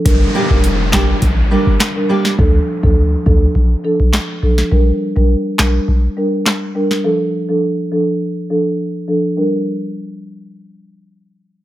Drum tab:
HH |x---x---x---x---|----------------|----------------|----------------|
CP |------x-----x---|------------x---|------x-----x---|----------------|
SD |------o-----o--o|------------o--o|------o-----o--o|----------------|
BD |o--o--o-o-------|o--o--o-o--o--o-|o--o--o-o-------|----------------|

HH |----------------|
CP |----------------|
SD |----------------|
BD |----------------|